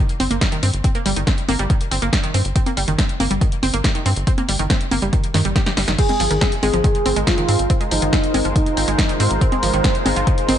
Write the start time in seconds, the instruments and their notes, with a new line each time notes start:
0.09 closed hi-hat
0.20 analog synth bass G1, synth arpeggio sound C4, open hi-hat, high conga
0.31 analog synth bass G1, synth arpeggio sound A#3, closed hi-hat
0.41 synth arpeggio sound G3, kick, snare, closed hi-hat
0.52 synth arpeggio sound D#3, closed hi-hat
0.63 analog synth bass G2, synth arpeggio sound C4, open hi-hat
0.74 analog synth bass G1, closed hi-hat
0.84 synth arpeggio sound C4, kick, closed hi-hat
0.95 synth arpeggio sound A#3, closed hi-hat
1.06 analog synth bass G1, synth arpeggio sound G3, open hi-hat
1.16 analog synth bass G1, synth arpeggio sound D#3, closed hi-hat
1.27 synth arpeggio sound C4, kick, snare, closed hi-hat
1.38 closed hi-hat
1.49 analog synth bass G1, synth arpeggio sound A#3, open hi-hat, high conga
1.59 analog synth bass G1, synth arpeggio sound G3, closed hi-hat
1.70 synth arpeggio sound D#3, kick, closed hi-hat
1.81 closed hi-hat
1.91 analog synth bass G1, synth arpeggio sound C4, open hi-hat
2.02 analog synth bass G1, synth arpeggio sound A#3, closed hi-hat
2.13 synth arpeggio sound G3, kick, snare, closed hi-hat
2.24 synth arpeggio sound D#3, closed hi-hat
2.34 analog synth bass G2, synth arpeggio sound C4, open hi-hat
2.45 analog synth bass G1, closed hi-hat
2.56 synth arpeggio sound C4, kick, closed hi-hat
2.66 synth arpeggio sound A#3, closed hi-hat, high conga
2.77 analog synth bass G1, synth arpeggio sound G3, open hi-hat
2.88 analog synth bass G1, synth arpeggio sound D#3, closed hi-hat
2.99 synth arpeggio sound C4, kick, snare, closed hi-hat
3.09 closed hi-hat
3.20 analog synth bass G1, synth arpeggio sound A#3, open hi-hat, high conga
3.31 analog synth bass G1, synth arpeggio sound G3, closed hi-hat
3.41 synth arpeggio sound D#3, kick, closed hi-hat
3.52 closed hi-hat
3.63 analog synth bass G1, synth arpeggio sound C4, open hi-hat, high conga
3.74 analog synth bass G1, synth arpeggio sound A#3, closed hi-hat
3.84 synth arpeggio sound G3, kick, snare, closed hi-hat
3.95 synth arpeggio sound D#3, closed hi-hat
4.06 analog synth bass G2, synth arpeggio sound C4, open hi-hat
4.16 analog synth bass G1, closed hi-hat
4.27 synth arpeggio sound C4, kick, closed hi-hat
4.38 synth arpeggio sound A#3, closed hi-hat, high conga
4.49 analog synth bass G1, synth arpeggio sound G3, open hi-hat
4.59 analog synth bass G1, synth arpeggio sound D#3, closed hi-hat
4.70 synth arpeggio sound C4, kick, snare, closed hi-hat
4.81 closed hi-hat
4.91 analog synth bass G1, synth arpeggio sound A#3, open hi-hat, high conga
5.02 analog synth bass G1, synth arpeggio sound G3, closed hi-hat
5.13 synth arpeggio sound D#3, kick, closed hi-hat
5.24 closed hi-hat
5.34 analog synth bass G2, synth arpeggio sound D#3, snare, open hi-hat
5.45 analog synth bass G1, synth arpeggio sound G3, closed hi-hat
5.56 synth arpeggio sound G4, kick, snare, closed hi-hat
5.66 synth arpeggio sound G4, snare, closed hi-hat
5.77 analog synth bass G1, synth arpeggio sound G3, snare, open hi-hat
5.88 analog synth bass G1, synth arpeggio sound D#3, snare, closed hi-hat
5.99 analog synth pad G#3 D#4 F4 A#4 C5, synth arpeggio sound C4, soft synth lead G#4, kick, closed hi-hat, crash
6.09 synth arpeggio sound G#3, closed hi-hat, high conga
6.20 analog synth bass G#1, synth arpeggio sound F3, open hi-hat
6.31 analog synth bass G#1, synth arpeggio sound D#3, closed hi-hat
6.41 synth arpeggio sound C4, kick, snare, closed hi-hat
6.52 closed hi-hat
6.63 analog synth bass G#1, synth arpeggio sound G#3, soft synth lead G#4, open hi-hat, high conga
6.74 analog synth bass G#1, synth arpeggio sound F3, closed hi-hat
6.84 synth arpeggio sound D#3, kick, closed hi-hat
6.95 closed hi-hat
7.06 analog synth bass G#1, synth arpeggio sound C4, open hi-hat, high conga
7.16 analog synth bass G#1, synth arpeggio sound G#3, closed hi-hat
7.27 synth arpeggio sound F3, soft synth lead F4, kick, snare, closed hi-hat
7.38 synth arpeggio sound D#3, closed hi-hat
7.49 analog synth bass G#2, synth arpeggio sound C4, open hi-hat
7.59 analog synth bass G#1, closed hi-hat
7.70 synth arpeggio sound C4, kick, closed hi-hat
7.81 synth arpeggio sound G#3, closed hi-hat
7.91 analog synth bass G#1, synth arpeggio sound F3, soft synth lead D#4, open hi-hat
8.02 analog synth bass G#1, synth arpeggio sound D#3, closed hi-hat
8.13 synth arpeggio sound C4, kick, snare, closed hi-hat
8.24 closed hi-hat
8.34 analog synth bass G#1, synth arpeggio sound G#3, open hi-hat, high conga
8.45 analog synth bass G#1, synth arpeggio sound F3, closed hi-hat
8.56 synth arpeggio sound D#3, soft synth lead D#4, kick, closed hi-hat
8.66 closed hi-hat
8.77 analog synth bass G#1, synth arpeggio sound C4, open hi-hat
8.88 analog synth bass G#1, synth arpeggio sound G#3, closed hi-hat
8.99 synth arpeggio sound F3, kick, snare, closed hi-hat
9.09 synth arpeggio sound D#3, closed hi-hat
9.20 analog synth bass G#2, synth arpeggio sound C4, open hi-hat
9.31 analog synth bass G#1, closed hi-hat
9.41 synth arpeggio sound C4, soft synth lead C5, kick, closed hi-hat
9.52 synth arpeggio sound G#3, closed hi-hat, high conga
9.63 analog synth bass G#1, synth arpeggio sound F3, open hi-hat
9.74 analog synth bass G#1, synth arpeggio sound D#3, closed hi-hat
9.84 synth arpeggio sound C4, kick, snare, closed hi-hat
9.95 closed hi-hat
10.06 analog synth bass G#1, synth arpeggio sound G#3, soft synth lead C5, open hi-hat, high conga
10.16 analog synth bass G#1, synth arpeggio sound F3, closed hi-hat
10.27 synth arpeggio sound D#3, kick, closed hi-hat
10.38 closed hi-hat
10.48 analog synth bass G#1, synth arpeggio sound C4, open hi-hat, high conga